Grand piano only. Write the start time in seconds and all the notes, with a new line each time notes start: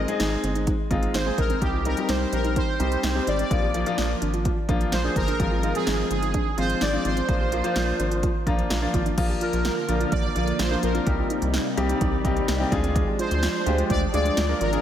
0.08 G#3 C4 D#4 G#4
0.91 G#3 C4 D#4 F4
1.26 G#3 C4 D#4 G#4
1.62 G3 C4 D#4 G4
1.85 G3 C4 D#4 A#4
1.97 G3 C4 D#4 G4
2.80 G3 C4 D#4 G4
3.15 G3 C4 D#4 G4
3.51 F3 A#3 D4 F4
3.75 F3 A#3 D4 F4
3.86 F3 A#3 D4 F4
4.69 F3 A#3 D4 F4
5.04 F3 A#3 D4 G#4
5.40 F3 G#3 C4 F4
5.63 F3 G#3 C4 F4
5.75 F3 G#3 C4 F4
6.58 F3 G#3 C4 F4
6.93 F3 G#3 C4 F4
7.28 F3 A#3 D4 F4
7.52 F3 A#3 D4 F4
7.64 F3 A#3 D4 F4
8.47 F3 A#3 D4 F4 A#5
8.70 F5
8.82 F3 A#3 D4 F4
9.18 F3 A#3 D4 F4
9.89 F3 A#3 D4 F4
10.35 F3 A#3 D4 F4
10.71 F3 A#3 D4 F4
10.95 F3 A#3 D4 F4
11.06 G3 C4 D#4 G4
11.77 G3 C4 D#4 G4
12.25 G3 C4 D#4 G4 A#5
12.48 G5
12.60 G3 C4 D#4 G4
12.72 G#3 D4 F4 G#4 F5
13.66 G#3 D4 F4 G4
14.14 G#3 D4 F4 G#4
14.49 G#3 D4 F4 A#4
14.73 G#3 D4 F4 G#4